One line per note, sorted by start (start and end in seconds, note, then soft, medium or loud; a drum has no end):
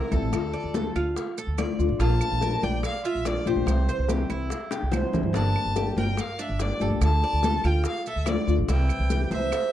0.00 0.11 E3 soft
0.00 0.12 G3 soft
0.00 0.12 C4 medium
0.00 0.11 E4 medium
0.00 0.16 A#4 medium
0.12 0.22 C2 medium
0.12 0.32 E3 medium
0.12 0.33 G3 medium
0.12 0.32 C4 medium
0.12 0.32 E4 medium
0.12 0.52 A4 medium
0.12 0.97 A4 medium
0.12 high bongo soft
0.12 high conga medium
0.12 maracas soft
0.22 0.32 A1 medium
0.32 0.53 D2 medium
0.32 0.73 D3 medium
0.32 0.74 A3 medium
0.32 0.74 D4 medium
0.32 0.75 F4 medium
0.32 high bongo medium
0.32 high conga soft
0.32 claves medium
0.32 maracas medium
0.53 0.74 D5 medium
0.53 high bongo soft
0.53 high conga soft
0.64 0.94 D2 medium
0.74 1.15 D3 medium
0.74 1.16 A3 medium
0.74 1.16 D4 medium
0.74 1.16 F4 medium
0.74 0.95 A4 medium
0.74 high bongo medium
0.74 high conga medium
0.74 maracas medium
0.95 1.15 D2 medium
0.95 1.36 F4 medium
0.95 high bongo soft
0.95 high conga soft
0.95 claves medium
0.95 maracas soft
1.16 muted nylon-string guitar stroke medium
1.16 high bongo medium
1.16 high conga soft
1.16 maracas medium
1.38 1.58 A4 medium
1.38 high conga soft
1.38 maracas medium
1.47 1.67 D2 medium
1.58 1.78 D3 soft
1.58 1.79 A3 soft
1.58 1.79 D4 medium
1.58 1.77 F4 soft
1.58 1.99 D5 medium
1.58 high bongo medium
1.58 low bongo medium
1.58 high conga medium
1.58 claves medium
1.58 maracas medium
1.79 1.88 D2 medium
1.79 2.00 A3 medium
1.79 2.00 D4 medium
1.79 1.99 F4 medium
1.79 high bongo soft
1.79 high conga soft
1.79 maracas soft
1.89 1.99 A1 medium
1.99 2.20 A#1 loud
1.99 2.40 F3 medium
1.99 2.41 A#3 medium
1.99 2.41 D4 medium
1.99 2.41 F4 medium
1.99 2.42 F4 medium
1.99 2.65 A5 loud
1.99 high bongo medium
1.99 high conga soft
1.99 maracas medium
2.20 high bongo soft
2.20 high conga soft
2.20 claves medium
2.20 maracas medium
2.31 2.61 A#1 medium
2.41 2.82 F3 medium
2.41 2.82 A#3 medium
2.41 2.83 D4 medium
2.41 2.83 F4 medium
2.41 2.62 A#4 medium
2.41 high bongo medium
2.41 high conga medium
2.41 maracas medium
2.63 2.83 A#1 medium
2.63 3.04 D5 medium
2.63 2.84 G5 medium
2.63 high bongo soft
2.63 high conga medium
2.63 maracas soft
2.83 3.04 F5 medium
2.83 muted nylon-string guitar stroke medium
2.83 high bongo medium
2.83 high conga soft
2.83 claves medium
2.83 maracas medium
3.04 3.46 F4 medium
3.04 3.28 E5 medium
3.04 high conga soft
3.04 maracas medium
3.15 3.35 A#1 medium
3.25 3.45 F3 soft
3.25 3.46 A#3 soft
3.25 3.46 D4 medium
3.25 3.44 F4 medium
3.25 3.48 D5 medium
3.25 high bongo medium
3.25 low bongo medium
3.25 high conga soft
3.25 maracas medium
3.45 3.55 A#1 medium
3.45 3.67 A#3 medium
3.45 3.67 D4 medium
3.45 3.66 F4 medium
3.45 3.87 G4 medium
3.45 4.30 C5 medium
3.45 high bongo soft
3.45 high conga medium
3.45 maracas soft
3.56 3.66 A#1 medium
3.66 3.87 C2 loud
3.66 4.07 C3 medium
3.66 4.07 E3 medium
3.66 4.08 G3 medium
3.66 4.09 C4 medium
3.66 4.09 E4 medium
3.66 high bongo medium
3.66 high conga soft
3.66 claves medium
3.66 maracas medium
3.88 4.09 C5 medium
3.88 high bongo soft
3.88 high conga soft
3.88 maracas medium
3.98 4.28 C2 medium
4.08 4.50 C3 medium
4.08 4.50 E3 medium
4.08 4.50 G3 medium
4.08 4.50 C4 medium
4.08 4.50 E4 medium
4.08 4.30 G4 medium
4.08 high bongo medium
4.08 high conga medium
4.08 maracas medium
4.30 4.50 C2 medium
4.30 4.71 E4 medium
4.30 high bongo soft
4.30 high conga soft
4.30 claves medium
4.30 maracas soft
4.50 muted nylon-string guitar stroke medium
4.50 high bongo medium
4.50 high conga soft
4.50 maracas medium
4.71 4.92 G4 medium
4.71 high bongo medium
4.71 high conga soft
4.71 maracas medium
4.82 5.02 C2 medium
4.92 5.13 E3 soft
4.92 5.13 G3 soft
4.92 5.12 C4 medium
4.92 5.11 E4 soft
4.92 5.33 C5 medium
4.92 low bongo medium
4.92 high conga medium
4.92 claves medium
4.92 maracas medium
5.12 5.23 C2 medium
5.12 5.34 E3 medium
5.12 5.33 G3 medium
5.12 5.33 C4 medium
5.12 5.33 E4 medium
5.12 low bongo medium
5.12 low conga medium
5.12 maracas soft
5.23 5.32 G2 medium
5.33 5.54 G1 loud
5.33 5.74 D3 medium
5.33 5.74 G3 medium
5.33 5.75 A#3 medium
5.33 5.75 D4 medium
5.33 5.76 D4 medium
5.33 5.76 G4 medium
5.33 5.94 A5 loud
5.33 high bongo medium
5.33 high conga soft
5.33 maracas medium
5.55 high bongo soft
5.55 high conga soft
5.55 claves medium
5.65 5.95 G1 medium
5.75 6.16 D3 medium
5.75 6.16 G3 medium
5.75 6.17 A#3 medium
5.75 6.17 D4 medium
5.75 5.97 G4 medium
5.75 6.17 G4 medium
5.75 high bongo soft
5.75 high conga medium
5.75 maracas medium
5.96 6.17 G1 medium
5.96 6.38 A#4 medium
5.96 6.22 G5 medium
5.96 high bongo soft
5.96 high conga medium
5.96 maracas soft
6.17 6.42 F5 medium
6.17 muted nylon-string guitar stroke medium
6.17 high bongo medium
6.17 high conga soft
6.17 claves medium
6.17 maracas medium
6.39 6.80 D4 medium
6.39 6.62 E5 medium
6.39 high conga soft
6.39 maracas medium
6.49 6.69 G1 medium
6.59 6.80 G3 soft
6.59 6.80 A#3 medium
6.59 6.79 D4 medium
6.59 6.79 G4 medium
6.59 6.81 D5 medium
6.59 high bongo medium
6.59 low bongo medium
6.59 high conga soft
6.59 maracas medium
6.80 6.90 G1 medium
6.80 7.00 G3 medium
6.80 7.01 A#3 medium
6.80 7.01 D4 medium
6.80 7.00 G4 medium
6.80 7.22 A4 medium
6.80 high bongo soft
6.80 high conga medium
6.80 maracas soft
6.90 7.01 C2 medium
7.01 7.21 D2 loud
7.01 7.41 D3 medium
7.01 7.42 A3 medium
7.01 7.43 D4 medium
7.01 7.43 F4 medium
7.01 7.68 A5 loud
7.01 high bongo medium
7.01 high conga soft
7.01 claves medium
7.01 maracas medium
7.22 7.43 D5 medium
7.22 high bongo soft
7.22 high conga soft
7.33 7.63 D2 medium
7.42 7.84 D3 medium
7.42 7.84 A3 medium
7.42 7.85 D4 medium
7.42 7.85 F4 medium
7.42 7.64 A4 medium
7.42 high bongo medium
7.42 high conga medium
7.42 maracas medium
7.63 7.84 D2 medium
7.63 8.05 F4 medium
7.63 7.87 G5 medium
7.63 high bongo soft
7.63 high conga soft
7.63 claves medium
7.63 maracas soft
7.84 8.06 F5 medium
7.84 muted nylon-string guitar stroke medium
7.84 high bongo medium
7.84 high conga soft
7.84 maracas medium
8.06 8.27 A4 medium
8.06 8.30 E5 medium
8.06 high conga soft
8.06 maracas medium
8.16 8.36 D2 medium
8.26 8.47 D3 soft
8.26 8.48 A3 soft
8.26 8.48 D4 medium
8.26 8.46 F4 medium
8.26 8.68 D5 medium
8.26 8.49 D5 medium
8.26 high bongo medium
8.26 low bongo medium
8.26 high conga medium
8.26 claves medium
8.26 maracas medium
8.47 8.58 D2 medium
8.47 8.69 A3 medium
8.47 8.69 D4 medium
8.47 8.68 F4 medium
8.47 high bongo soft
8.47 high conga soft
8.47 maracas soft
8.58 8.68 A1 medium
8.68 8.89 C2 loud
8.68 9.08 C3 medium
8.68 9.09 E3 medium
8.68 9.10 G3 medium
8.68 9.10 C4 medium
8.68 9.10 E4 medium
8.68 9.11 E4 medium
8.68 9.29 G5 loud
8.68 high bongo medium
8.68 high conga soft
8.68 maracas medium
8.89 high bongo soft
8.89 high conga soft
8.89 claves medium
8.89 maracas medium
8.99 9.30 C2 medium
9.10 9.51 C3 medium
9.10 9.52 E3 medium
9.10 9.52 G3 medium
9.10 9.52 C4 medium
9.10 9.53 E4 medium
9.10 9.31 G4 medium
9.10 high bongo medium
9.10 high conga medium
9.10 maracas medium
9.31 9.51 C2 medium
9.31 9.72 C5 medium
9.31 9.72 E5 medium
9.31 high bongo soft
9.31 high conga medium
9.31 maracas soft
9.52 muted nylon-string guitar stroke medium
9.52 high bongo medium
9.52 high conga soft
9.52 claves medium
9.52 maracas medium